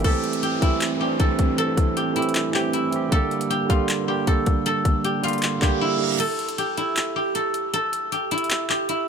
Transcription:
Already playing: E4 G4
0.02 A2 E3 G3 A3 C4 A4, kick, closed hi-hat, downlifter
0.08 G4
0.24 closed hi-hat
0.33 closed hi-hat
0.43 G4, closed hi-hat
0.59 E3 A3 C4 E4, kick, closed hi-hat
0.65 A4
0.81 clap, closed hi-hat
0.98 E3 A3 C4 G4
1.03 D4
1.20 A4, kick, closed hi-hat
1.39 kick, closed hi-hat
1.58 A4, closed hi-hat
1.77 kick, closed hi-hat
1.97 G4, closed hi-hat
2.13 E3 A3 C4 E4, closed hi-hat
2.19 G4, closed hi-hat
2.29 closed hi-hat
2.35 clap, closed hi-hat
2.51 E3 A3 C4 G4, clap
2.57 G4
2.73 E4, closed hi-hat
2.90 E3 A3 C4, closed hi-hat
2.96 G4
3.09 G2 D3 G3 A#3 D4 A4, kick, closed hi-hat
3.15 G4
3.31 closed hi-hat
3.41 closed hi-hat
3.50 G4, closed hi-hat
3.67 D3 G3 A#3 F4, kick, closed hi-hat
3.73 G4
3.89 clap, closed hi-hat
4.05 D3 G3 A#3 G4
4.11 G4
4.27 A4, kick, closed hi-hat
4.46 kick, closed hi-hat
4.66 A4, closed hi-hat
4.85 kick, closed hi-hat
5.04 G4, closed hi-hat
5.21 D3 G3 A#3 F4, closed hi-hat
5.26 G4, closed hi-hat
5.33 closed hi-hat
5.38 closed hi-hat
5.42 clap, closed hi-hat, reverse cymbal
5.59 D3 G3 A#3 G4, kick, clap
5.65 G4
5.81 E4
5.98 D3 G3 A#3
6.04 A#4
6.20 A4, closed hi-hat, crash
6.39 closed hi-hat
6.49 closed hi-hat
6.58 G4, closed hi-hat
6.77 E4, closed hi-hat
6.96 clap, closed hi-hat
7.16 G4
7.35 A4, closed hi-hat
7.54 closed hi-hat
7.74 A4, closed hi-hat
7.93 closed hi-hat
8.12 G4, closed hi-hat
8.31 E4, closed hi-hat
8.38 closed hi-hat
8.44 closed hi-hat
8.50 clap, closed hi-hat
8.70 G4, clap
8.89 E4, closed hi-hat

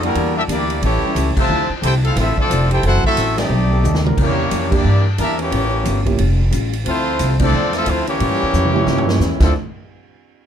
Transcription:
Already playing: F2
0.01 D3 G3 A#3 D4 E4 F#4 A#4, ride
0.14 E2 E3 A#3 D4 G4, ride
0.35 G3 A#3 D4 E4 G4 A#4 E5
0.48 D2 E3 G3 A#3 D4 G4 D5, hi-hat pedal, ride
0.52 A#3 E4
0.70 ride
0.81 A1 A2 E3 G3 A3 C#4 E4 G4 C#5, ride
1.03 G3 C#4 E4 A4, muted upright bass stroke
1.15 C#2 A2 G3 C#4 E4, hi-hat pedal, ride
1.35 C3 F3 A3, muted upright bass stroke, kick, crash
1.39 F4 C5 E5 A5
1.48 D2 D3 F3 C4 D4 E4 C5
1.52 E4
1.69 muted upright bass stroke
1.82 C2 D3 F3 C4 E4 G4 A4 C5 G5, hi-hat pedal, ride
2.04 A3 C4 E4 F4 A4 F5, ride
2.16 A1 D3 F3 A3 C4 E4 F4 A4 E5, snare, ride
2.37 F3 A3 C4 D4 F4 A4 D5, muted upright bass stroke, kick
2.50 F1 D3 F3 C4 E4, hi-hat pedal, ride
2.71 E4 G4 A4 C5 G5, ride
2.83 F#1 F#2 E3 F#3 A3 C4 E4 F#4 A4 C5 F#5, ride
3.04 A3 C4 E4 F#4 A4 E5, muted upright bass stroke, kick
3.16 A1 F#2 E3 A3 C4, hi-hat pedal, ride
3.38 G3 A3 C4 D#4 G4 D5, snare, ride
3.49 B1 B2 G3 A3 D#4
3.72 B2 G3 D#4 A4
3.83 D#2 B2 G3 A3 D#4, hi-hat pedal, mid tom
3.95 snare
4.03 D3 G3 E4 A#4, mid tom
4.16 E2 E3 G3 A#3 C#4 D4 G4, kick, crash
4.22 A#3 E4 G4 C#5
4.51 F2 E3 A#3 D4 G4, hi-hat pedal, ride
4.71 G3 A#3 D4 E4 G4, kick, crash
4.75 A#3 E4 G4 D5
4.84 G2 E3 A#3 D4 G4
5.18 E2 E3 G3 A#3 D4 E4 G4 A#4 E5, hi-hat pedal, ride
5.38 E3 G3 C#4 E4 G4 C#5, ride
5.42 A#3
5.50 A1 A2 G3 C#4 F4, ride
5.83 G1 A2 G3 C#4 F4, hi-hat pedal, ride
6.06 F3 A#3 C#4 E4 G4, kick, ride
6.18 F1 A2 G3 C#4 F4, ride
6.51 A1 A2 G3 C#4 F4, hi-hat pedal, ride
6.73 ride
6.84 D2 D3 F3 A3 C4 E4 F4 C5, ride
7.18 C2 D3 F3 C4 E4, hi-hat pedal, ride
7.39 F3 A3 C4 D4 E4, kick, crash
7.43 C4 F4 A4 D5
7.52 E2 D3 F3 C4 E4
7.73 A3 C4 E4 A4 E5, snare, ride
7.77 C4 F4
7.85 D2 D3 F3 A3 C4 E4 F4, hi-hat pedal, ride
7.89 A3 C5
8.07 E3 G3 A#3 C#4 E4 G4 C#5, ride
8.19 A2 G3 C#4 F4, ride
8.31 G2
8.42 E2
8.52 F2 A2 G3 C#4 F4, hi-hat pedal
8.65 mid tom
8.74 F3 G3 A#3 C#4 E4, mid tom
8.86 G2 A2 G3 C#4 F4, snare
8.98 floor tom
9.07 F3 G3 A#3 C#4 E4, snare
9.19 E2 A2 G3 C#4 F4, snare, hi-hat pedal
9.39 D2 D3 F3 A3 C4 D4 E4 F4 A4 D5, kick, snare, crash
9.44 E4

